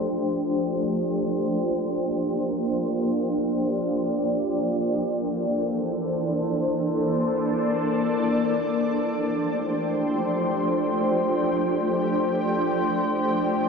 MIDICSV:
0, 0, Header, 1, 2, 480
1, 0, Start_track
1, 0, Key_signature, -1, "major"
1, 0, Tempo, 500000
1, 13140, End_track
2, 0, Start_track
2, 0, Title_t, "Ambient pad"
2, 0, Program_c, 0, 92
2, 0, Note_on_c, 0, 53, 74
2, 0, Note_on_c, 0, 57, 68
2, 0, Note_on_c, 0, 62, 69
2, 0, Note_on_c, 0, 67, 70
2, 0, Note_on_c, 0, 72, 83
2, 840, Note_off_c, 0, 57, 0
2, 878, Note_on_c, 0, 58, 71
2, 2745, Note_off_c, 0, 72, 0
2, 2783, Note_on_c, 0, 74, 86
2, 4649, Note_off_c, 0, 53, 0
2, 4649, Note_off_c, 0, 58, 0
2, 4649, Note_off_c, 0, 62, 0
2, 4649, Note_off_c, 0, 67, 0
2, 4668, Note_off_c, 0, 74, 0
2, 4686, Note_on_c, 0, 69, 70
2, 4687, Note_on_c, 0, 52, 77
2, 4687, Note_on_c, 0, 58, 70
2, 4687, Note_on_c, 0, 62, 69
2, 4687, Note_on_c, 0, 72, 82
2, 6572, Note_off_c, 0, 72, 0
2, 6590, Note_on_c, 0, 74, 85
2, 8457, Note_off_c, 0, 52, 0
2, 8457, Note_off_c, 0, 58, 0
2, 8457, Note_off_c, 0, 62, 0
2, 8457, Note_off_c, 0, 69, 0
2, 8476, Note_off_c, 0, 74, 0
2, 8496, Note_on_c, 0, 53, 79
2, 8496, Note_on_c, 0, 57, 70
2, 8496, Note_on_c, 0, 62, 72
2, 8496, Note_on_c, 0, 67, 69
2, 8496, Note_on_c, 0, 72, 85
2, 13140, Note_off_c, 0, 53, 0
2, 13140, Note_off_c, 0, 57, 0
2, 13140, Note_off_c, 0, 62, 0
2, 13140, Note_off_c, 0, 67, 0
2, 13140, Note_off_c, 0, 72, 0
2, 13140, End_track
0, 0, End_of_file